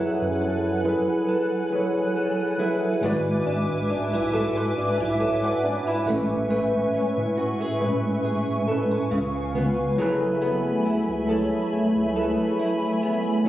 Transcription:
0.00 0.83 F#3 loud
0.00 3.03 F#3 medium
0.00 0.85 E4 loud
0.00 2.59 E4 medium
0.00 0.86 G#4 loud
0.00 0.40 A4 medium
0.00 0.87 A4 loud
0.00 0.85 B4 medium
0.00 0.88 B4 medium
0.00 9.94 B4 medium
0.00 1.76 C#5 loud
0.00 2.99 F#5 medium
0.00 9.08 G#5 medium
0.00 2.99 F#6 medium
0.22 0.96 F#2 loud
0.42 1.27 A4 medium
0.83 1.42 F#3 medium
0.83 1.43 E4 medium
0.83 1.44 G#4 medium
0.83 1.44 A4 medium
0.83 1.72 B4 medium
0.88 1.45 B4 loud
1.29 2.14 A4 medium
1.70 2.29 F#3 medium
1.70 2.30 E4 medium
1.70 2.31 G#4 medium
1.70 2.31 A4 medium
1.70 3.03 B4 medium
1.76 2.32 C#5 medium
2.16 3.12 A4 medium
2.57 2.88 F#3 medium
2.57 2.89 E4 medium
2.57 3.46 E4 medium
2.57 2.89 G#4 medium
2.57 2.90 A4 medium
2.62 2.90 B4 medium
3.01 3.77 G#1 loud
3.01 3.87 G#2 loud
3.01 3.88 G#3 loud
3.01 6.07 G#3 medium
3.01 3.89 F#4 loud
3.01 4.33 B4 medium
3.01 6.04 E5 medium
3.01 6.04 D6 medium
3.06 3.90 D5 loud
3.46 3.88 D4 medium
3.90 3.99 B1 soft
3.90 4.13 D4 medium
4.13 4.50 B1 medium
4.13 4.76 E4 medium
4.31 4.90 G#2 medium
4.31 4.91 G#3 medium
4.31 4.92 F#4 medium
4.31 4.57 A4 medium
4.36 4.93 E5 loud
4.57 5.19 B4 medium
4.77 4.86 B1 soft
4.77 5.00 D4 medium
5.00 5.37 B1 medium
5.00 5.63 E4 medium
5.20 5.43 A4 medium
5.20 5.43 C#5 medium
5.20 5.43 E5 medium
5.43 6.16 B4 medium
5.43 5.63 D5 medium
5.43 5.63 F#5 medium
5.63 5.87 D4 medium
5.63 5.87 E5 medium
5.63 5.86 G#5 medium
5.87 6.16 E4 medium
5.87 6.29 G#5 medium
5.87 6.29 B5 medium
6.06 6.81 A1 medium
6.06 7.46 A2 medium
6.06 7.47 G#3 medium
6.06 6.49 A3 medium
6.06 7.48 C#4 medium
6.06 9.08 E5 medium
6.06 9.94 C#6 medium
6.10 7.49 B4 loud
6.50 9.21 A3 medium
6.50 7.80 B4 medium
6.94 7.03 A2 soft
6.94 9.54 C#4 medium
7.18 7.92 A2 medium
7.37 7.61 F#4 medium
7.61 8.23 G#4 medium
7.79 8.38 A2 medium
7.79 8.39 G#3 medium
7.79 8.40 C#4 medium
7.79 8.67 B4 medium
7.84 8.41 B4 loud
8.24 10.01 G#4 medium
8.66 9.11 A2 medium
8.66 9.11 G#3 medium
8.66 9.12 C#4 medium
8.66 8.91 A4 medium
8.71 9.13 B4 medium
8.91 9.21 B4 medium
9.11 9.85 C#2 loud
9.11 10.08 C#3 medium
9.11 9.97 F5 medium
9.11 13.49 G#5 medium
9.53 9.84 C#3 medium
9.53 9.85 G#3 medium
9.53 10.41 B3 medium
9.53 9.85 F4 medium
9.58 9.86 B4 medium
9.97 10.72 F#1 loud
9.97 10.83 F#3 loud
9.97 13.45 F#3 medium
9.97 13.49 A3 medium
9.97 10.84 E4 loud
9.97 10.84 G#4 loud
9.97 11.28 A4 medium
9.97 10.85 A4 loud
9.97 13.49 E5 medium
9.97 13.49 B5 medium
10.02 10.85 B4 loud
10.42 13.02 B3 medium
10.85 10.95 C#2 soft
10.85 11.72 E4 medium
11.09 11.46 C#2 medium
11.27 11.86 F#3 medium
11.27 11.87 E4 medium
11.27 11.87 G#4 medium
11.27 12.15 A4 medium
11.27 11.88 A4 medium
11.32 11.88 C#5 loud
11.72 11.82 C#2 soft
11.72 12.59 E4 medium
11.96 12.33 C#2 loud
12.14 13.00 F#3 medium
12.14 13.01 E4 medium
12.14 13.02 G#4 medium
12.14 13.46 A4 medium
12.14 13.02 A4 medium
12.19 13.03 B4 medium
12.59 13.49 E4 medium
13.03 13.49 B3 medium
13.45 13.49 F#3 loud
13.45 13.49 E4 loud

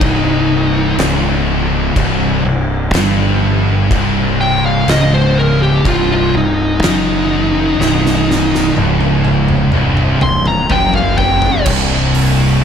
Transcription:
0.00 0.95 C1 loud
0.00 0.98 C2 loud
0.00 0.96 D#4 medium
0.00 kick loud
0.00 crash medium
0.98 1.92 C#1 loud
0.98 1.95 C#2 loud
0.98 snare loud
0.98 crash medium
1.95 2.41 C1 medium
1.95 2.43 C2 loud
1.95 kick loud
1.95 crash medium
2.45 2.90 C1 medium
2.45 2.84 C2 medium
2.93 3.87 G1 loud
2.93 3.89 G2 loud
2.93 snare loud
2.93 crash medium
3.90 4.84 C1 medium
3.90 4.86 C2 loud
3.90 kick loud
3.90 crash medium
4.41 4.64 G5 loud
4.66 4.88 F5 loud
4.88 5.81 C#1 loud
4.88 5.84 C#2 loud
4.88 5.12 D#5 medium
4.88 snare loud
4.88 crash medium
5.14 5.37 C5 loud
5.38 5.61 A#4 loud
5.62 5.85 G4 medium
5.85 6.30 C1 medium
5.85 6.32 C2 loud
5.85 6.10 F4 loud
5.85 kick loud
5.85 crash medium
6.12 6.35 F4 loud
6.33 6.79 C1 medium
6.33 6.73 C2 medium
6.33 6.82 D#4 loud
6.83 7.76 F#1 medium
6.83 7.78 F#2 loud
6.83 8.73 D#4 loud
6.83 snare loud
6.83 crash medium
7.79 8.73 C1 loud
7.79 8.75 C2 loud
7.79 snare medium
8.06 snare medium
8.31 snare medium
8.55 snare medium
8.77 9.70 C#1 medium
8.77 9.73 C#2 loud
8.77 high tom medium
9.01 high tom medium
9.25 high tom medium
9.48 mid tom medium
9.72 10.19 C1 medium
9.72 10.21 C2 loud
9.72 mid tom medium
9.97 mid tom medium
10.21 10.67 C1 medium
10.21 10.61 C2 medium
10.21 10.46 C6 loud
10.21 mid tom loud
10.46 10.70 A#5 medium
10.46 mid tom medium
10.70 11.63 F#1 medium
10.70 11.65 F#2 loud
10.70 10.94 G5 medium
10.70 mid tom loud
10.94 11.18 F5 medium
10.94 floor tom medium
11.18 11.65 G5 loud
11.18 floor tom loud
11.42 floor tom loud
11.66 12.59 C1 loud
11.66 12.62 C2 loud
11.66 kick loud
11.66 crash loud
12.15 open hi-hat medium

